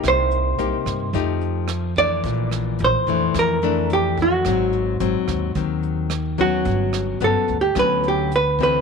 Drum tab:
HH |xxxxxxxx|xxxxxxxx|xxxxxxxx|xxxxxxxx|
SD |r--r--r-|-r--r---|r--r--r-|-r--r---|
BD |o--oo--o|o---o--o|o--oo--o|o---o--o|